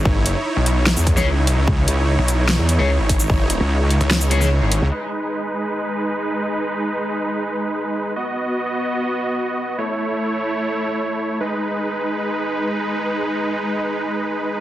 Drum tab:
HH |--x---x---x---o-|--x---x---x---o-|--x---ox--x---o-|--x---x---x---x-|
SH |---------x-x----|------x--------x|---------x-x----|---------------x|
SD |--------o--o----|--------o-------|--------o--o----|----------------|
BD |o---------o-----|o-------------o-|o---------------|----------------|

HH |--x---x---x---x-|--x---x---x---x-|--x---x---x---x-|--x---x---x---x-|
SH |---------x------|---------------x|------x--x------|----------------|
SD |----------------|----------------|----------------|----------------|
BD |----------------|----------------|----------------|----------------|

HH |--x---x---x---x-|
SH |----------------|
SD |----------------|
BD |----------------|